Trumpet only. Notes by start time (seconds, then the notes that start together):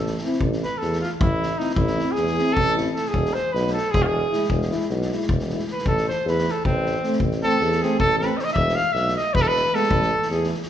0.63 B4
0.78 A4
1.01 F4
1.20 E4
1.58 D#4
1.74 E4
2.11 G#4
2.53 A4
2.94 A4
3.08 G#4
3.33 C5
3.52 B4
3.73 A4
3.91 G#4
4.02 F4 G#4
5.72 B4
5.87 A4
6.08 C5
6.29 B4
6.51 A4
6.66 C4
7.42 A4
7.82 G#4
7.99 A4
8.19 B4
8.37 C5 D#5
8.44 D#5
8.53 E5
8.75 F5
8.92 E5
9.16 D#5
9.34 B4
9.41 A4
9.47 B4
9.75 A4
10.31 G#4